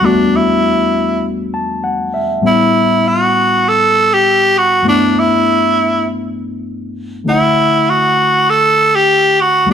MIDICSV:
0, 0, Header, 1, 3, 480
1, 0, Start_track
1, 0, Key_signature, 2, "major"
1, 0, Tempo, 603622
1, 23, Time_signature, 4, 2, 24, 8
1, 7738, End_track
2, 0, Start_track
2, 0, Title_t, "Tenor saxophone"
2, 0, Program_c, 0, 66
2, 41, Note_on_c, 0, 62, 84
2, 286, Note_on_c, 0, 64, 81
2, 298, Note_off_c, 0, 62, 0
2, 995, Note_off_c, 0, 64, 0
2, 1960, Note_on_c, 0, 64, 84
2, 2449, Note_on_c, 0, 66, 92
2, 2461, Note_off_c, 0, 64, 0
2, 2929, Note_on_c, 0, 69, 99
2, 2941, Note_off_c, 0, 66, 0
2, 3291, Note_on_c, 0, 67, 98
2, 3303, Note_off_c, 0, 69, 0
2, 3640, Note_on_c, 0, 66, 98
2, 3651, Note_off_c, 0, 67, 0
2, 3871, Note_off_c, 0, 66, 0
2, 3881, Note_on_c, 0, 62, 93
2, 4126, Note_on_c, 0, 64, 86
2, 4138, Note_off_c, 0, 62, 0
2, 4834, Note_off_c, 0, 64, 0
2, 5795, Note_on_c, 0, 64, 88
2, 6280, Note_on_c, 0, 66, 94
2, 6291, Note_off_c, 0, 64, 0
2, 6756, Note_on_c, 0, 69, 107
2, 6768, Note_off_c, 0, 66, 0
2, 7120, Note_on_c, 0, 67, 96
2, 7132, Note_off_c, 0, 69, 0
2, 7480, Note_on_c, 0, 66, 95
2, 7492, Note_off_c, 0, 67, 0
2, 7710, Note_off_c, 0, 66, 0
2, 7738, End_track
3, 0, Start_track
3, 0, Title_t, "Reed electric piano"
3, 0, Program_c, 1, 4
3, 0, Control_c, 1, 64, 127
3, 2, Note_on_c, 1, 40, 60
3, 9, Note_on_c, 1, 55, 59
3, 16, Note_on_c, 1, 57, 57
3, 28, Note_on_c, 1, 59, 59
3, 33, Control_c, 1, 64, 0
3, 35, Note_on_c, 1, 62, 59
3, 43, Note_on_c, 1, 66, 67
3, 153, Control_c, 1, 64, 127
3, 1223, Note_on_c, 1, 81, 66
3, 1446, Note_off_c, 1, 81, 0
3, 1460, Note_on_c, 1, 78, 71
3, 1685, Note_off_c, 1, 78, 0
3, 1700, Note_on_c, 1, 76, 73
3, 1901, Note_off_c, 1, 40, 0
3, 1904, Note_off_c, 1, 55, 0
3, 1908, Note_off_c, 1, 57, 0
3, 1913, Note_off_c, 1, 59, 0
3, 1917, Note_off_c, 1, 62, 0
3, 1918, Note_on_c, 1, 45, 63
3, 1921, Note_off_c, 1, 66, 0
3, 1925, Note_off_c, 1, 76, 0
3, 1927, Note_on_c, 1, 55, 62
3, 1939, Note_on_c, 1, 59, 55
3, 1948, Note_on_c, 1, 61, 56
3, 1955, Control_c, 1, 64, 0
3, 1961, Note_on_c, 1, 64, 67
3, 2099, Control_c, 1, 64, 127
3, 3818, Note_off_c, 1, 45, 0
3, 3822, Note_off_c, 1, 55, 0
3, 3828, Note_off_c, 1, 59, 0
3, 3833, Note_off_c, 1, 61, 0
3, 3837, Note_on_c, 1, 43, 65
3, 3839, Note_off_c, 1, 64, 0
3, 3852, Note_on_c, 1, 57, 58
3, 3860, Note_on_c, 1, 59, 60
3, 3871, Note_on_c, 1, 62, 57
3, 3873, Control_c, 1, 64, 0
3, 3881, Note_on_c, 1, 64, 69
3, 4014, Control_c, 1, 64, 127
3, 5737, Note_off_c, 1, 43, 0
3, 5744, Note_off_c, 1, 57, 0
3, 5748, Note_off_c, 1, 59, 0
3, 5754, Note_off_c, 1, 62, 0
3, 5759, Note_off_c, 1, 64, 0
3, 5760, Note_on_c, 1, 50, 59
3, 5771, Note_on_c, 1, 57, 53
3, 5781, Note_on_c, 1, 61, 54
3, 5792, Control_c, 1, 64, 0
3, 5793, Note_on_c, 1, 64, 59
3, 5802, Note_on_c, 1, 78, 72
3, 5951, Control_c, 1, 64, 127
3, 7658, Note_off_c, 1, 50, 0
3, 7663, Note_off_c, 1, 57, 0
3, 7668, Note_off_c, 1, 61, 0
3, 7674, Note_off_c, 1, 64, 0
3, 7679, Note_off_c, 1, 78, 0
3, 7679, Note_on_c, 1, 40, 62
3, 7685, Note_on_c, 1, 55, 59
3, 7694, Note_on_c, 1, 57, 57
3, 7703, Note_on_c, 1, 59, 55
3, 7710, Control_c, 1, 64, 0
3, 7712, Note_on_c, 1, 62, 57
3, 7738, Note_off_c, 1, 40, 0
3, 7738, Note_off_c, 1, 55, 0
3, 7738, Note_off_c, 1, 57, 0
3, 7738, Note_off_c, 1, 59, 0
3, 7738, Note_off_c, 1, 62, 0
3, 7738, End_track
0, 0, End_of_file